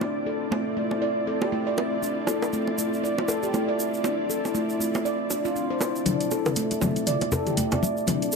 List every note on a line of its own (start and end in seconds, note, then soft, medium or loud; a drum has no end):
0.00 6.02 C4 medium
0.00 0.09 D4 medium
0.00 6.02 E4 medium
0.00 6.02 F4 medium
0.00 6.02 D5 medium
0.00 low bongo medium
0.26 0.40 A4 medium
0.51 0.65 A3 medium
0.51 low bongo medium
0.77 0.91 A3 medium
0.91 low bongo medium
1.02 1.10 D5 medium
1.27 1.40 A4 medium
1.42 1.52 G4 medium
1.42 low bongo medium
1.52 1.65 A3 medium
1.67 1.73 D5 medium
1.78 high bongo medium
1.78 low bongo medium
2.02 2.11 D4 medium
2.02 shaker medium
2.27 2.41 A4 medium
2.27 low bongo loud
2.27 shaker medium
2.42 high bongo medium
2.42 shaker soft
2.53 2.66 A3 medium
2.53 shaker medium
2.67 low bongo medium
2.78 2.92 A3 medium
2.78 shaker medium
2.94 shaker soft
3.04 3.11 D5 medium
3.04 shaker soft
3.18 low bongo medium
3.28 3.42 A4 medium
3.28 high bongo medium
3.28 shaker medium
3.43 3.53 G4 medium
3.43 shaker soft
3.54 3.67 A3 medium
3.54 low bongo medium
3.54 shaker medium
3.69 3.74 D5 medium
3.79 shaker medium
3.94 shaker soft
4.04 4.12 D4 medium
4.04 low bongo medium
4.04 shaker medium
4.30 4.43 A4 medium
4.30 shaker medium
4.45 low bongo medium
4.45 shaker soft
4.55 4.68 A3 medium
4.55 shaker medium
4.69 shaker soft
4.80 4.94 A3 medium
4.80 shaker medium
4.94 low bongo medium
4.94 shaker soft
5.05 5.13 D5 medium
5.05 shaker soft
5.30 5.38 D4 medium
5.30 low bongo medium
5.30 shaker medium
5.45 5.55 F4 medium
5.45 shaker soft
5.56 5.70 D4 medium
5.56 shaker soft
5.71 5.80 C5 medium
5.81 high bongo medium
5.81 low bongo medium
5.81 shaker medium
5.96 shaker soft
6.06 8.36 C4 medium
6.06 6.14 D4 medium
6.06 8.36 E4 medium
6.06 8.36 F4 medium
6.06 8.36 D5 medium
6.06 closed hi-hat medium
6.06 mid tom soft
6.06 muted conga soft
6.06 high conga medium
6.06 shaker soft
6.21 closed hi-hat soft
6.21 shaker soft
6.31 6.45 A4 medium
6.31 low bongo medium
6.31 shaker medium
6.46 mid tom soft
6.46 high bongo medium
6.46 muted conga soft
6.46 shaker soft
6.56 6.70 A3 medium
6.56 closed hi-hat medium
6.56 shaker medium
6.71 closed hi-hat soft
6.71 muted conga medium
6.71 shaker soft
6.81 6.96 A3 medium
6.81 mid tom soft
6.81 low bongo medium
6.81 high conga loud
6.81 shaker medium
6.96 closed hi-hat soft
6.96 muted conga soft
6.96 shaker soft
7.07 7.15 D5 medium
7.07 closed hi-hat medium
7.07 mid tom soft
7.07 shaker soft
7.21 closed hi-hat soft
7.21 low bongo medium
7.21 muted conga medium
7.32 7.45 A4 medium
7.32 high bongo medium
7.32 low conga loud
7.32 shaker medium
7.47 7.57 G4 medium
7.47 closed hi-hat soft
7.47 mid tom soft
7.47 shaker soft
7.57 7.71 A3 medium
7.57 closed hi-hat medium
7.57 muted conga soft
7.57 high conga medium
7.57 low conga medium
7.57 shaker medium
7.72 7.78 D5 medium
7.72 closed hi-hat soft
7.72 low bongo medium
7.72 low conga medium
7.72 shaker soft
7.83 muted conga soft
7.83 high conga loud
7.83 shaker medium
7.97 shaker soft
8.07 8.16 D4 medium
8.07 closed hi-hat medium
8.07 mid tom soft
8.07 low bongo medium
8.07 muted conga soft
8.07 high conga loud
8.07 shaker medium
8.22 closed hi-hat soft
8.22 shaker soft
8.32 shaker medium